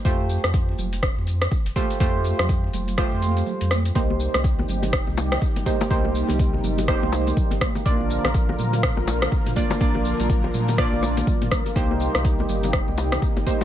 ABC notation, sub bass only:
X:1
M:4/4
L:1/16
Q:"Swing 16ths" 1/4=123
K:Cdor
V:1 name="Sub bass" clef=bass
F,,3 F,,3 F,,,3 F,,3 z F,,, z2 | F,,3 F,,3 F,,,3 F,,3 z F,,3 | C,,3 C,,3 G,,,3 C,,3 z G,,, z2 | C,,3 C,,3 G,,,3 C,,3 z G,,, z2 |
B,,,3 B,,,3 B,,3 B,,,3 z B,, z2 | B,,,3 B,,,3 B,,3 B,,,3 z B,, z2 | C,,3 C,,3 G,,,3 C,,3 z G,,, z2 |]